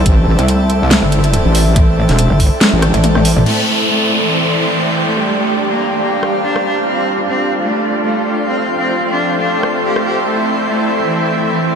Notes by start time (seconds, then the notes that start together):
Already playing: A3 C4 E4 A4 C5 D5 E5 G5 A5
0.06 A1, kick, closed hi-hat
0.27 A1
0.39 C2, closed hi-hat
0.48 closed hi-hat
0.70 closed hi-hat
0.91 snare, closed hi-hat
1.03 G1
1.12 closed hi-hat
1.24 closed hi-hat
1.33 closed hi-hat
1.45 A1
1.55 open hi-hat
1.76 A1, kick, closed hi-hat
2.09 E1, snare, closed hi-hat
2.19 closed hi-hat
2.30 G1
2.40 kick, open hi-hat
2.61 snare, closed hi-hat
2.73 A1
2.82 cross-stick, closed hi-hat
2.94 A1, closed hi-hat
3.04 closed hi-hat, high tom
3.15 cross-stick, high tom
3.25 open hi-hat
3.37 A1, mid tom
3.46 A3 C4 E4 A4 C5 E5, crash, downlifter
3.62 D5
3.84 C6
3.89 A3
4.20 E3 G5
4.64 E3
5.07 A3
5.16 G3 D4 G4 D5 G5
5.38 A3
5.55 F5
5.71 A#3 C5
5.93 A#5
6.01 A#3
6.23 cross-stick
6.44 D4
6.56 cross-stick
6.65 D4
6.87 C4 D4 F4 D5 F5
7.17 A4 D5
7.29 C4
7.62 A3 G5 C6
8.05 A3
8.47 C4
8.57 F3 A3 C4 C5
8.78 C4
9.11 D4
9.42 D4
9.63 cross-stick
9.85 G4
9.96 cross-stick
10.06 G4
10.27 A3 E4 E5
10.70 A3
11.02 E3
11.45 E3